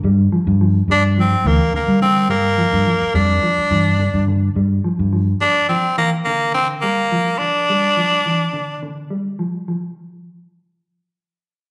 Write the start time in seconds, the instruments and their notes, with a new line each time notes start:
0.03 fingered electric bass G2, clean electric guitar G3
0.32 clean electric guitar F3
0.47 fingered electric bass G2
0.61 clean electric guitar F3
0.88 fingered electric bass G2, clean electric guitar G3, tenor saxophone D4
1.18 clean electric guitar F3, tenor saxophone C4
1.44 fingered electric bass D2, clean electric guitar E3, tenor saxophone A#3
1.73 clean electric guitar D3, tenor saxophone A#3, muted fingered electric bass stroke
1.88 fingered electric bass G3
2.02 clean electric guitar D3, tenor saxophone C4
2.29 fingered electric bass G2, clean electric guitar G3, tenor saxophone A#3
2.58 clean electric guitar F3
2.73 fingered electric bass G2
2.86 clean electric guitar F3
3.02 muted fingered electric bass stroke
3.14 fingered electric bass F2, clean electric guitar G3, tenor saxophone D4
3.43 clean electric guitar F3
3.58 muted fingered electric bass stroke
3.71 fingered electric bass G2, clean electric guitar E3
3.99 clean electric guitar D3
4.14 fingered electric bass G2
4.28 clean electric guitar D3
4.55 fingered electric bass G2, clean electric guitar G3
4.84 clean electric guitar F3
4.99 fingered electric bass G2
5.13 clean electric guitar F3
5.41 tenor saxophone D4, muted clean electric guitar stroke
5.69 clean electric guitar F3, tenor saxophone C4
5.98 clean electric guitar E3, tenor saxophone A#3
6.25 clean electric guitar D3, tenor saxophone A#3
6.54 clean electric guitar D3, tenor saxophone C4
6.82 clean electric guitar G3, tenor saxophone A#3
7.12 clean electric guitar F3
7.38 tenor saxophone D4, muted clean electric guitar stroke
7.70 clean electric guitar G3
7.97 clean electric guitar F3
8.26 clean electric guitar E3
8.53 clean electric guitar D3
8.83 clean electric guitar D3
9.10 clean electric guitar G3
9.39 clean electric guitar F3
9.68 clean electric guitar F3